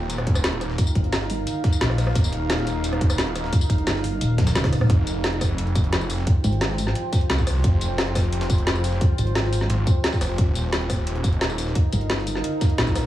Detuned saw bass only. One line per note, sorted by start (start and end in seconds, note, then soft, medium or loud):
0.00 0.77 D#1 loud
1.81 2.14 A#1 loud
2.15 3.51 D#1 medium
4.90 6.25 F1 loud
7.30 7.63 C2 loud
7.64 9.00 F1 loud
9.70 9.85 G#1 loud
10.21 10.37 F1 loud
10.38 11.74 D#1 loud
12.78 13.06 A#1 loud